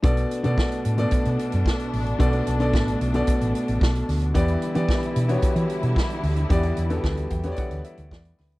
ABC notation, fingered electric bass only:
X:1
M:4/4
L:1/16
Q:1/4=111
K:Bm
V:1 name="Fingered electric bass" clef=bass
B,,,2 z B,, z2 A,,2 z B,, z F,, z2 A,,,2 | B,,,2 B,,,2 A,,,2 B,,,2 z A,,, z A,,, B,,,2 D,,2 | E,,2 z E, z2 B,,2 z E, z B,, z2 D,,2 | E,,2 E,,2 D,,2 E,,2 z D,, z D,, E,,2 D,,2 |]